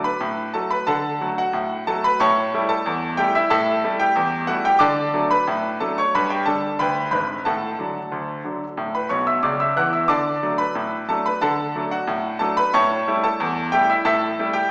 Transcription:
0.04 B4 B5
0.21 A2
0.54 F#3 A3 F#4 A4 A5
0.71 B4 B5
0.87 D3 A4 F#5 A5
1.21 F#3 A3 F#4
1.38 F#4 F#5
1.53 A2
1.87 F#3 A3 F#4 A4 A5
2.04 B4 B5
2.20 A2 C#5 A5 C#6
2.54 G3 A3 E4
2.69 A4 A5
2.86 E2
3.17 G3 A3 E4 G4 G5
3.35 E4 E5
3.50 A2 A4 E5 A5
3.84 G3 A3 E4
4.00 G4 G5
4.16 E2
4.47 G3 A3 E4 F#4 F#5
4.65 G4 G5
4.79 D3 D5 A5 D6
5.14 F#3 A3 D4
5.31 B4 B5
5.48 A2
5.80 F#3 A3 D4 A4 A5
5.98 C#5 C#6
6.15 G2 B4 B5
6.30 G4 G5
6.46 D3 G3 D4 A4 A5
6.79 D2 B4 G5 B5
7.11 G#1 G#2 B4 B5
7.45 A2 A4 F#5 A5
7.79 D3 F#3 D4
8.12 D2
8.44 D3 F#3 D4
8.77 A2
8.95 B4 B5
9.09 B1 B2 C#5 C#6
9.27 E5 E6
9.43 C#2 C#3 D5 D6
9.60 E5 E6
9.76 E2 E3 F#5 F#6
9.93 E5 E6
10.08 D3 D5 A5 D6
10.43 F#3 A3 D4
10.58 B4 B5
10.75 A2
11.08 F#3 A3 D4 A4 A5
11.26 B4 B5
11.41 D3 A4 F#5 A5
11.75 F#3 A3 D4
11.91 F#4 F#5
12.07 A2
12.39 F#3 A3 D4 A4 A5
12.57 B4 B5
12.74 A2 C#5 A5 C#6
13.07 G3 A3 E4
13.24 A4 A5
13.40 E2
13.72 G3 A3 E4 G4 G5
13.90 E4 E5
14.05 A2 A4 E5 A5
14.39 G3 A3 E4
14.53 G4 G5

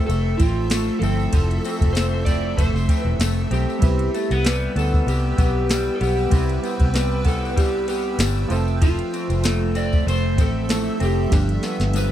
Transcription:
Already playing: F3 A3 C4 A4 E5 E6
0.07 F1 A3 A4, ride, tambourine
0.37 A1 C4 F4, kick, ride, tambourine
0.70 A3, snare, ride, tambourine
0.99 G1 F3 A3 C4 E4 A4, ride
1.03 A4, tambourine
1.20 tambourine
1.33 F1 F3, kick, ride, tambourine
1.51 ride
1.64 C4, ride, tambourine
1.81 F1, kick, ride
1.93 A3 C5, ride, tambourine
1.97 snare
2.25 C4 D5, kick, ride, tambourine
2.57 F1 A3 C5, kick, ride, tambourine
2.73 F1, snare, tambourine
2.89 C4, kick, ride, tambourine
2.99 B4
3.05 E1
3.19 F1 A3, snare, ride, tambourine
3.51 B1 C4 G4, ride, tambourine
3.70 tambourine
3.79 C2 G3 B3 C4 E4 B4 G5, kick, ride
3.84 B4, tambourine
3.99 ride
4.14 A3, ride, tambourine
4.30 C2 B3, ride, tambourine
4.44 G3 B4, snare, ride, tambourine
4.75 D2 B3 A4, ride, tambourine
4.94 kick, tambourine
5.07 C2 G3 G4, ride, tambourine
5.38 B1 B3 G4, kick, ride, tambourine
5.69 G3, snare, ride, tambourine
5.95 A4
6.01 B1 B3 G4, ride, tambourine
6.19 tambourine
6.30 C2 C3 G3 B3 C4, kick, ride, tambourine
6.34 E4 B4
6.49 ride
6.63 B3, ride, tambourine
6.80 C2, kick, ride
6.94 G3 B4, snare, ride, tambourine
7.25 B3 A4, kick, ride, tambourine
7.45 tambourine
7.56 G3 G4, kick, ride, tambourine
7.88 B3 G4, ride, tambourine
8.18 G1 G3, snare, ride, tambourine
8.48 F1 F3 A3 C4 A4 E5, ride, tambourine
8.53 A4
8.68 tambourine
8.81 F3 F4, kick, ride, tambourine
8.99 ride
9.13 C4, ride, tambourine
9.30 F1, ride, tambourine
9.44 A3, snare, ride, tambourine
9.75 C4 D5, ride, tambourine
9.92 kick, tambourine
10.07 F1 A3 C5, ride, tambourine
10.38 A1 C4 A4, kick, ride, tambourine
10.68 F3 A3 C4 E4 A4, snare, ride, tambourine
11.00 F1 C4, ride, tambourine
11.04 G4
11.29 G1 G2 F3 G3 B3 D4 G4 B5 D6, kick, snare, ride
11.34 G4, tambourine
11.49 ride
11.63 B3, snare, ride, tambourine
11.80 G1, snare, ride
11.93 F3 B4, high tom, ride, tambourine

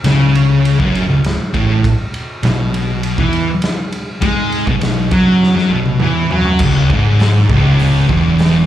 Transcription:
0.04 C#2 C#3, snare, ride
0.35 ride
0.65 ride
0.78 F#1 F#2, kick
0.95 ride
1.08 C#1 C#2
1.24 snare, ride
1.53 A1 A2, kick, ride
1.84 kick, ride
2.14 ride
2.43 B1 B2, snare, ride
2.74 ride
3.03 ride
3.18 E2 E3, kick
3.33 ride
3.62 snare, ride
3.92 ride
4.21 G#2 G#3, kick, ride
4.52 ride
4.67 B1 B2, kick
4.81 snare, ride
5.11 F#2 F#3, kick, ride
5.43 snare
5.56 F#2 F#3, snare
5.69 B1 B2
5.86 high tom
6.00 E2 E3, mid tom
6.29 F#2 F#3, floor tom
6.45 floor tom
6.59 C#1, kick, crash
6.63 C#2
6.90 G#1 G#2, kick
7.19 snare, open hi-hat
7.49 C#1 C#2, kick
7.79 open hi-hat
8.09 E1 E2, kick
8.39 snare, open hi-hat

